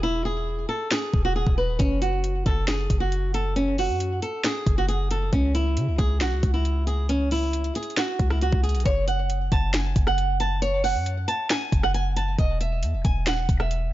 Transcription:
Already playing: E1
0.03 E4
0.25 G#4
0.69 A4
0.91 G#4, snare
1.14 E1, kick
1.25 F#4
1.36 G#4
1.47 E1, kick
1.58 B4
1.69 D#1
1.79 F#1 C#4, kick, closed hi-hat
2.02 F#4, closed hi-hat
2.24 closed hi-hat
2.46 F#1 A4, kick, closed hi-hat
2.68 G#4, snare, closed hi-hat
2.90 F#1, kick, closed hi-hat
3.00 F#4
3.12 closed hi-hat
3.34 A4, closed hi-hat
3.56 C#4, closed hi-hat
3.78 F#4, open hi-hat
3.89 F#2
4.00 closed hi-hat
4.22 A4, closed hi-hat
4.44 G#4, snare, closed hi-hat
4.67 F#1, kick, closed hi-hat
4.78 F#4
4.88 G#4, closed hi-hat
5.11 A4, closed hi-hat
5.33 C#2 C#4, kick, closed hi-hat
5.55 E4, closed hi-hat
5.77 C#3, closed hi-hat
5.88 C#2
5.98 C#2 G#4, kick, closed hi-hat
6.21 B1 F#4, snare, closed hi-hat
6.32 C#2
6.43 C#2, kick, closed hi-hat
6.54 E4
6.65 closed hi-hat
6.87 G#4, closed hi-hat
7.09 C#4, closed hi-hat
7.31 E4, open hi-hat
7.53 closed hi-hat
7.64 closed hi-hat
7.75 G#4, closed hi-hat
7.83 closed hi-hat
7.90 closed hi-hat
7.97 F#4, snare, closed hi-hat
8.19 C#2, kick, closed hi-hat
8.30 E4, cross-stick
8.41 F#4, closed hi-hat
8.53 C#2, kick
8.63 G#4, closed hi-hat
8.69 closed hi-hat
8.75 B1, closed hi-hat
8.80 closed hi-hat
8.86 F#1 C#5, kick, closed hi-hat
9.08 F#5, closed hi-hat
9.30 closed hi-hat
9.52 F#1 A5, kick, closed hi-hat
9.74 G#5, snare, closed hi-hat
9.96 F#1, kick, closed hi-hat
10.07 F#5, cross-stick
10.18 closed hi-hat
10.40 A5, closed hi-hat
10.62 C#5, closed hi-hat
10.84 F#5, open hi-hat
10.95 F#2
11.06 closed hi-hat
11.28 A5, closed hi-hat
11.50 G#5, snare, closed hi-hat
11.72 F#1, kick, closed hi-hat
11.83 F#5, cross-stick
11.94 G#5, closed hi-hat
12.16 A5, closed hi-hat
12.38 E1 D#5, kick, closed hi-hat
12.61 E5, closed hi-hat
12.83 E2, closed hi-hat
12.94 E1
13.04 E1 G#5, kick, closed hi-hat
13.27 D#1 F#5, snare, closed hi-hat
13.38 E1
13.49 E1, kick, closed hi-hat
13.60 E5, cross-stick
13.71 closed hi-hat

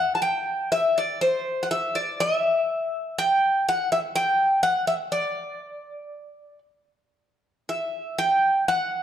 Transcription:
Already playing: F#5
0.15 A5
0.22 G5
0.72 E5
0.98 D5
1.21 C5
1.63 F#5
1.71 E5
1.95 D5
2.20 E5
3.18 G5
3.69 F#5
3.92 E5
4.16 G5
4.63 F#5
4.87 E5
5.12 D5
7.69 E5
8.18 G5
8.68 F#5

